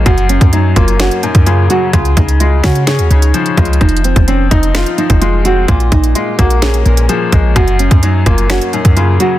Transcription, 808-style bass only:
\new Staff \with { instrumentName = "808-style bass" } { \clef bass \time 4/4 \key ges \lydian \tempo 4 = 128 ges,,8. ges,8. ges,,8. r8 ges,8. r8 | des,8 des,4 des8. ees,16 des,8 r8 des,8 | f,,8. f,,8. f,,8. r8 f,,4~ f,,16 | bes,,8 bes,,8 r8 bes,,4 bes,,8 r8 bes,,8 |
ges,,8. ges,8. ges,,8. r8 ges,8. r8 | }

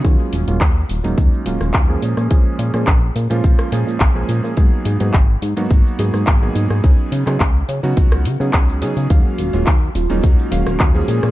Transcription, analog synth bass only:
\new Staff \with { instrumentName = "Analog synth bass" } { \clef bass \time 4/4 \key ees \minor \tempo 4 = 106 ees,16 r16 ees,,16 ees,,16 ees,8 ees,,16 ees,,16 ees,16 r16 ees,,16 ees,,16 ees,8 bes,16 bes,16 | bes,,16 r16 bes,16 bes,16 bes,,8 bes,16 bes,16 bes,,16 r16 bes,16 bes,16 bes,,8 bes,16 bes,16 | aes,,16 r16 aes,16 aes,16 aes,,8 aes,16 aes,16 aes,,16 r16 aes,16 aes,16 aes,,8 aes,16 aes,16 | des,16 r16 des16 des16 des,8 des16 des16 des,8 des16 des16 des,8 des16 des16 |
ees,16 r16 ees,,16 ees,,16 ees,8 ees,,16 ees,,16 ees,16 r16 ees,,16 ees,,16 ees,8 bes,16 bes,16 | }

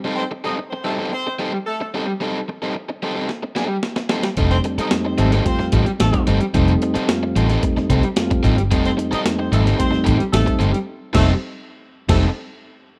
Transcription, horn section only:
\new Staff \with { instrumentName = "Horn section" } { \time 4/4 \key f \mixolydian \tempo 4 = 111 r16 <c' c''>16 r16 <ees' ees''>16 r16 <c' c''>16 <a a'>16 r16 <c' c''>8 r8 <a a'>8 r8 | r1 | r16 <c' c''>16 r16 <ees' ees''>16 r16 <c' c''>16 <a a'>16 r16 <c' c''>8 r8 <a a'>8 r8 | r1 |
r16 <c' c''>16 r16 <ees' ees''>16 r16 <c' c''>16 <a a'>16 r16 <c' c''>8 r8 <a a'>8 r8 | r8 <a a'>8 r4 r16 <a a'>8 r4 r16 | }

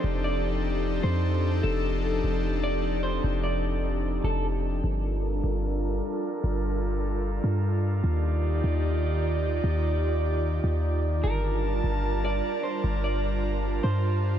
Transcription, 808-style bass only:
\new Staff \with { instrumentName = "808-style bass" } { \clef bass \time 4/4 \key g \minor \tempo 4 = 150 f,,2~ f,,8 f,4. | f,,4. f,,2~ f,,8 | f,,2~ f,,8 f,,4. | g,,4. g,,4. r4 |
g,,2~ g,,8 g,4. | ees,4. ees,2~ ees,8 | ees,2~ ees,8 ees,4. | g,,4. g,,4. r4 |
g,,2~ g,,8 g,4. | }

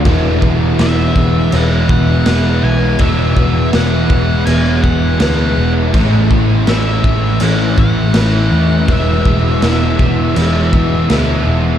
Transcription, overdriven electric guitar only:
\new Staff \with { instrumentName = "Overdriven electric guitar" } { \clef bass \time 4/4 \key e \major \tempo 4 = 82 <e, b, e gis b e'>4 <e gis b e'>4 <e, b, e gis b e'>4 <e gis b e'>4 | <e, b, e gis b e'>4 <e gis b e'>4 <e, b, e gis b e'>4 <e gis b e'>4 | <a, e a cis' e'>4 <e a cis' e'>4 <a, e a cis' e'>4 <e a cis' e'>4 | <e, b, e gis b e'>4 <e gis b e'>4 <e, b, e gis b e'>4 <e gis b e'>4 | }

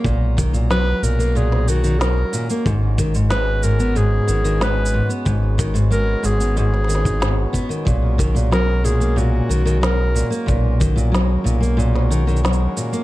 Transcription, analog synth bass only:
\new Staff \with { instrumentName = "Analog synth bass" } { \clef bass \time 4/4 \key b \major \tempo 4 = 92 b,,4. b,,2 r8 | gis,,2~ gis,,8 gis,,4 r8 | gis,,4. gis,,2 r8 | b,,2~ b,,8 b,,4 r8 |
b,,4. b,,2 r8 | }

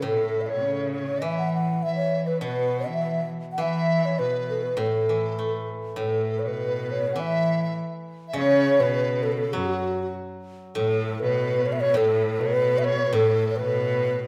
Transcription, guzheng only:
\new Staff \with { instrumentName = "Guzheng" } { \clef bass \time 2/4 \tempo 4 = 101 a,2 | e2 | b,2 | e2 |
a,8 e8 a4 | a,2 | e2 | cis2 |
fis2 | a,2 | a,2 | a,2 | }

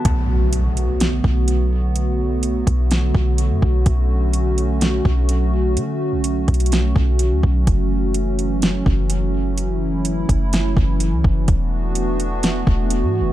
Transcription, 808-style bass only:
\new Staff \with { instrumentName = "808-style bass" } { \clef bass \time 4/4 \key b \minor \tempo 4 = 126 b,,2~ b,,8 b,,4.~ | b,,4. b,,4 b,,8. fis,16 b,,8 | b,,2~ b,,8 b,,4. | d8. b,,8. b,,4 b,,8. d,16 b,,8 |
fis,,2~ fis,,8 fis,,4.~ | fis,,4. fis,,4 fis,,8. cis,16 fis,,8 | e,,2~ e,,8 e,,8. gis,16. e,,16. | }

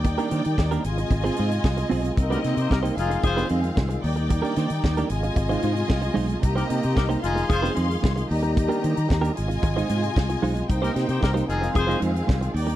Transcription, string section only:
\new Staff \with { instrumentName = "String section" } { \time 4/4 \key f \dorian \tempo 4 = 113 <ees' d'' g''>4. <f' ees'' aes''>2~ <f' ees'' aes''>8 | <c' bes' ees''>4. <c' aes' f''>2 <ees' d'' g''>8~ | <ees' d'' g''>4. <f' ees'' aes''>2~ <f' ees'' aes''>8 | <g' ees'' bes''>4. <aes' f'' c'''>2 <g' ees'' bes''>8~ |
<g' ees'' bes''>4. <f' ees'' aes''>2~ <f' ees'' aes''>8 | <ees' c'' g''>4. <c' aes' f''>2 <ees' d'' g''>8 | }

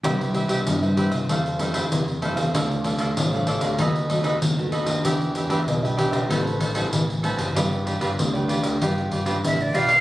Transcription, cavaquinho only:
\new Staff \with { instrumentName = "Cavaquinho" } { \time 4/4 \key c \major \tempo 4 = 96 <g' b' c'' e''>8 <g' b' c'' e''>16 <g' b' c'' e''>16 r16 <b' c'' e''>16 <g' b' c'' e''>16 <b' c'' e''>16 <a' c'' f''>8 <e' a' c'' f''>16 <e' a' c'' f''>16 r8 <e' a' c'' f''>16 <a' c'' f''>16 | <d' a' d'' f''>8 <d' a' d'' f''>16 <d' a' d'' f''>16 r16 <a' d'' f''>16 <d' a' d'' f''>16 <a' d'' f''>16 <dis' a' b' dis''>8 <dis' a' b' dis''>16 <dis' a' b' dis''>16 r8 <dis' a' b' dis''>16 <a' b' dis''>16 | <d' g' b' e''>8 <d' g' b' e''>16 <d' g' b' e''>16 r16 <g' b' e''>16 <d' g' b' e''>16 <g' b' e''>16 <a' b' c'' a''>8 <a' b' c'' a''>16 <a' b' c'' a''>16 r8 <a' b' c'' a''>16 <b' c'' a''>16 | <f' g' b' d''>8 <f' g' b' d''>16 <f' g' b' d''>16 r16 <g' b' d''>16 <f' g' b' d''>16 <g' b' d''>16 <f' g' b' d''>8 <f' g' b' d''>16 <f' g' b' d''>16 r8 <f' g' b' d''>16 <g' b' d''>16 | }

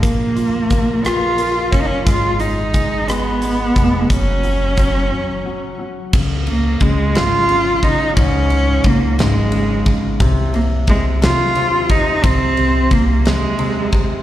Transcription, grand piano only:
\new Staff \with { instrumentName = "Grand piano" } { \clef bass \time 6/8 \key des \major \tempo 4. = 59 bes8 f'8 bes8 f'8 bes8 f'8 | aes8 aes8 aes8 aes8 aes8 aes8 | ges8 ges8 ges8 ges8 ges8 ges8 | des8 des8 des8 des8 des8 des8 |
aes,8 des8 des8 des8 des8 des8 | c8 c8 c8 c8 c8 c8 | c8 c8 c8 c8 c8 c8 | }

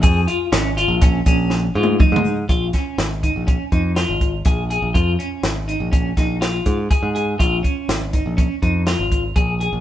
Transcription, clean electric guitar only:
\new Staff \with { instrumentName = "Clean electric guitar" } { \time 5/4 \key bes \minor \tempo 4 = 122 aes'8 f'8 des'8 f'8 des'8 des'4 f'8 ees'4 | f'8 des'4 ees'8 des'8 ees'8 f'4 aes'8 aes'8 | f'8 des'4 ees'8 des'8 ees'8 f'4 aes'8 aes'8 | f'8 des'4 ees'8 des'8 ees'8 f'4 aes'8 aes'8 | }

